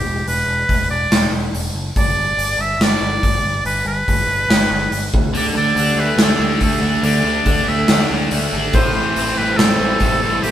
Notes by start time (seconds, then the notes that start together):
Already playing: G4
0.05 E1
0.26 E1 B4, open hi-hat
0.46 E1
0.69 E1, kick, open hi-hat
0.89 E1 D5
1.11 E1, snare, open hi-hat
1.32 E1
1.53 E1, open hi-hat
1.73 F#1
1.96 G1 D5, kick, open hi-hat
2.15 G1
2.37 G1, open hi-hat
2.57 G1 E5
2.78 G1, snare, open hi-hat
2.83 D5
3.01 G1
3.23 G1, kick, open hi-hat
3.44 G1
3.65 G1 B4, open hi-hat
3.85 G1 B4
4.08 G1, kick, open hi-hat
4.27 G1
4.49 G1, snare, open hi-hat
4.70 G1
4.91 G1, open hi-hat
5.14 D2, kick
5.33 D2 D3 G3 A3 D4 G4 A4, open hi-hat
5.37 D4 G4 A4 D5
5.46 D4 G4 A4
5.54 D2 D3 G3 D4 D5
5.75 D2 D3 G3 D4, open hi-hat
5.79 G4 A4
5.95 D2 G3 A3
5.99 D4 G4 A4 B4
6.08 D4 G4 A4
6.17 D2 D4, snare, open hi-hat
6.23 A4
6.29 D4 G4 A4
6.39 D2 D3 G3 D4 G4
6.61 D2 D3 G3 A3 D4 G4 A4, kick, open hi-hat
6.81 D2 G3 D4 G4
6.92 D4 G4 A4
7.02 D2 D3 G3 D4 G4 A4 D5, open hi-hat
7.24 D2 D3 G3 G4 A4
7.44 D2 D3 G3 D4 G4 A4, kick, open hi-hat
7.66 D2 G3 A3 D4 G4 A4 E5
7.78 D4 G4 A4
7.88 D2 D4, snare, open hi-hat
7.98 D4 G4 A4
8.08 D2 D3 G3 D4 G4 A4
8.31 D2 D3 G3 A3 D4 G4 A4, open hi-hat
8.51 G#1 G3 D4 G4 A4
8.62 D4 G4 A4
8.72 A1 A2 E3 G3 C4 E4 G4 A4 C5, kick, open hi-hat
8.84 G3 C4 E4 A4
8.94 A1 E3 G3 C4 E4 A4 C5
9.15 A1 A2 E3 G3 C4 E4 A4, open hi-hat
9.38 A1 G3 C4 E4 A4 B4
9.48 G3 C4 E4 A4
9.57 A1 C4 A4, snare, open hi-hat
9.69 G3 C4 E4 A4
9.79 A1 E3 G3 C4 E4 A4
10.00 A1 A2 E3 G3 C4 E4 A4, kick, open hi-hat
10.22 A1 G3 C4 A4
10.32 G3 C4 E4 A4
10.42 A1 A2 E3 G3 C4 E4 G4 A4, open hi-hat